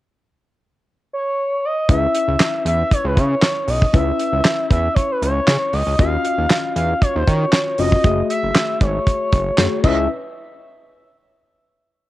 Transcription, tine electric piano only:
1.89 3.90 C#4 medium
1.89 3.90 E4 medium
1.89 3.91 B4 medium
1.89 3.91 E5 medium
3.93 5.95 C#4 medium
3.93 5.95 E4 medium
3.93 5.95 B4 medium
3.93 5.96 E5 medium
5.98 7.75 C#4 medium
5.98 7.75 F4 medium
5.98 7.75 F#4 medium
5.98 7.76 D#5 medium
7.79 8.04 C#4 medium
7.79 8.04 F4 soft
7.79 8.03 F#4 soft
7.79 8.05 D#5 medium
8.04 9.55 A3 medium
8.04 9.55 F#4 medium
8.04 9.56 G#4 medium
8.04 9.56 E5 medium
9.58 9.84 A3 medium
9.58 9.84 F#4 medium
9.58 9.84 G#4 medium
9.58 9.84 C#5 medium
9.84 10.08 C#4 medium
9.84 10.08 E4 medium
9.84 10.08 B4 medium
9.84 10.08 D#5 medium

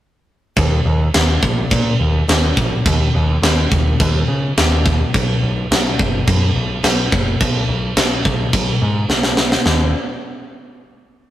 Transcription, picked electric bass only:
0.57 0.79 D#2 medium
0.85 1.08 D#2 medium
1.14 1.36 D#2 medium
1.43 1.65 A#1 loud
1.71 1.93 A#2 loud
2.00 2.22 D#2 medium
2.28 2.50 D#2 medium
2.57 2.79 A#1 medium
2.86 3.08 D#2 medium
3.15 3.37 D#2 medium
3.42 3.65 D#2 loud
3.72 3.94 D#2 medium
4.00 4.22 D#2 loud
4.28 4.50 C#3 medium
4.57 5.02 D#2 loud
5.14 5.36 B1 medium
5.42 5.64 B1 medium
5.71 5.93 B1 medium
5.99 6.21 F#1 medium
6.27 6.49 F#2 medium
6.55 6.78 B1 loud
6.83 7.06 B1 medium
7.12 7.34 F#1 medium
7.41 7.63 B1 medium
7.69 7.91 B1 medium
7.97 8.19 B1 medium
8.25 8.47 B1 loud
8.53 8.75 B1 medium
8.82 9.04 G#2 medium
9.09 9.53 B1 medium
9.66 9.92 D#2 medium

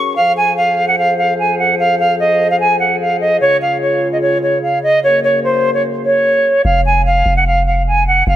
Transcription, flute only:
0.00 0.13 C#6 medium
0.16 0.32 F5 loud
0.37 0.53 G#5 medium
0.57 0.85 F5 medium
0.87 0.95 F#5 medium
0.98 1.14 F5 medium
1.17 1.34 F5 medium
1.39 1.55 G#5 medium
1.58 1.75 F#5 medium
1.79 1.95 F5 loud
1.99 2.15 F5 medium
2.19 2.48 D#5 medium
2.50 2.58 F5 medium
2.60 2.76 G#5 medium
2.79 2.96 F#5 medium
3.00 3.17 F5 medium
3.21 3.37 D#5 medium
3.40 3.57 C#5 loud
3.61 3.77 F5 medium
3.81 4.10 C#5 medium
4.12 4.20 D#5 medium
4.21 4.38 C#5 medium
4.42 4.58 C#5 medium
4.63 4.79 F5 medium
4.83 4.99 D#5 loud
5.03 5.19 C#5 loud
5.24 5.40 C#5 medium
5.44 5.72 C5 medium
5.74 5.82 C#5 medium
6.05 6.62 C#5 medium
6.64 6.81 F5 loud
6.86 7.02 G#5 medium
7.06 7.34 F5 medium
7.36 7.44 F#5 medium
7.46 7.62 F5 medium
7.66 7.82 F5 medium
7.87 8.03 G#5 medium
8.07 8.23 F#5 medium
8.27 8.36 F5 loud

